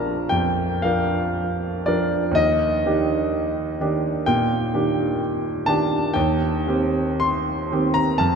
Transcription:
Already playing: A#1 F3 D4 A#4 F5 A5 A#5
0.29 F2 G5
0.82 F3 D4 A#4 F5
1.86 F3 D4 A#4 D5
2.31 D#2 D#5
2.86 D#3 D4 G4
3.81 D#3 D4 G4
4.26 A#2 G5
4.74 D#3 D4 G4
5.66 D#3 D4 G4 A5
6.14 D#2 G5
6.67 D#3 C4 G4
7.20 C6
7.72 D#3 C4 G4
7.94 A#5
8.18 F2 A5

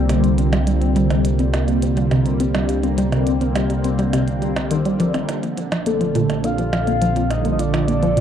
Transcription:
Already playing: C2 D3 G3 A#3 C4 F4
0.09 C3, closed hi-hat, percussion blips
0.24 closed hi-hat
0.38 C4, closed hi-hat
0.53 G3, closed hi-hat, percussion blips
0.67 G3, closed hi-hat
0.82 C4, closed hi-hat
0.96 G3, closed hi-hat
1.10 C3, closed hi-hat, percussion blips
1.25 closed hi-hat
1.39 C4, closed hi-hat
1.54 G3, closed hi-hat, percussion blips
1.68 G3, closed hi-hat
1.82 C4, closed hi-hat
1.97 G3, closed hi-hat
2.11 C3, closed hi-hat, percussion blips
2.26 closed hi-hat
2.40 C4, closed hi-hat
2.55 G3, closed hi-hat, percussion blips
2.69 G3, closed hi-hat
2.83 C4, closed hi-hat
2.98 G3, closed hi-hat
3.12 C3, closed hi-hat, percussion blips
3.27 closed hi-hat
3.41 C4, closed hi-hat
3.56 G3, closed hi-hat, percussion blips
3.70 G3, closed hi-hat
3.84 C4, closed hi-hat
3.99 G3, closed hi-hat
4.13 C3, closed hi-hat, percussion blips
4.28 closed hi-hat
4.42 G3, closed hi-hat
4.56 C4, closed hi-hat, percussion blips
4.71 D#3, closed hi-hat
4.85 G3, closed hi-hat
5.00 F3, closed hi-hat
5.14 C4, closed hi-hat, percussion blips
5.29 A#1 D3, closed hi-hat, percussion blips
5.43 A#3 C4, closed hi-hat
5.57 F3, closed hi-hat
5.67 G3
5.72 F3, closed hi-hat, percussion blips
5.86 A#3 A4, closed hi-hat
6.01 F3, closed hi-hat
6.14 A#2 A4, closed hi-hat
6.30 closed hi-hat, percussion blips
6.44 A#3 F5, closed hi-hat
6.58 F3, closed hi-hat
6.73 F3 F5, closed hi-hat, percussion blips
6.87 A#3, closed hi-hat
7.02 F3, closed hi-hat
7.16 A#2, closed hi-hat
7.28 F4 D#5, closed hi-hat, percussion blips
7.45 A#3, closed hi-hat
7.52 D#5
7.59 F3 D5, closed hi-hat
7.74 F3, closed hi-hat, percussion blips
7.88 A#3, closed hi-hat
8.03 F3, closed hi-hat
8.17 A#2, closed hi-hat

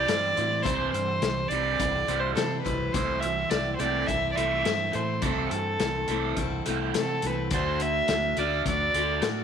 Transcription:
Already playing: E3 D5
0.08 G2 C3 E3 G3 C4 E4 C5, snare, closed hi-hat
0.36 A2 C3 E3 G3 C4 E4 C5, closed hi-hat
0.63 C2 C3 E3 G3 C4 E4 C5, kick, closed hi-hat
0.91 G2 C5, closed hi-hat
0.95 C3 E3
1.22 C2 C3 E3, snare, closed hi-hat
1.49 C2 C3 E3 C4 E4 C5 D5, closed hi-hat
1.53 G3
1.78 C2 C3 E3 G3 C4 E4 C5, kick, closed hi-hat
2.07 C2 C3 E3 G3 C4 E4 C5, closed hi-hat
2.20 C5
2.34 C3 E3 G3 C4 E4 A4 C5, snare, closed hi-hat
2.62 C2 C3 E4 B4 C5
2.66 E3 G3 C4, kick, closed hi-hat
2.92 C2 C3 E3 A3 C4 E4 A4 C5, kick, closed hi-hat
3.20 C3 E3 E5, closed hi-hat
3.50 C2 C3 E3 D5, snare, closed hi-hat
3.75 A4 C5
3.80 C2 C3 E3 A3 C4 E4 D5, closed hi-hat
4.06 C2 C3 E3 A3 C4 E4 A4 E5, kick, closed hi-hat
4.32 C3 E3 D5 E5
4.36 C2 A3 C4 E4 A4, closed hi-hat
4.64 G2 C3 E3 A3 C4 E4, snare, closed hi-hat
4.68 A4
4.92 A2 C3 E3 A3 C4 E4 A4 C5, closed hi-hat
5.22 C2 C3 E3 A3 C4 E4 A4, kick, closed hi-hat
5.50 G2 C3 E3 A4, closed hi-hat
5.80 C2 C3 E3, snare, closed hi-hat
6.08 C2 C3 E3 A3 E4 A4, closed hi-hat
6.12 A3 C4
6.36 C2 C3 E3 A3 C4, kick, closed hi-hat
6.40 E4 A4
6.65 C2 C3 E3 A3 C4 E4 A4, closed hi-hat
6.94 C3 E3 A3 C4 E4 A4, snare, closed hi-hat
7.22 C2 C3 E3 C4 E4 A4, closed hi-hat
7.26 A3 B4
7.51 D2 D3 A3 D4 F#4 A4 C5, kick, closed hi-hat
7.80 D3 A3 E5, closed hi-hat
8.08 D2 D3 A3, snare, closed hi-hat
8.37 D2 D3 A3 D4 F#4 A4 D5, closed hi-hat
8.65 D2 D3 A3 D4 F#4 A4 D5, kick, closed hi-hat
8.94 D2 D3 A3 D4 F#4 A4, closed hi-hat
8.98 D4
9.21 A2 D3 A3 D4 F#4 A4, snare, closed hi-hat

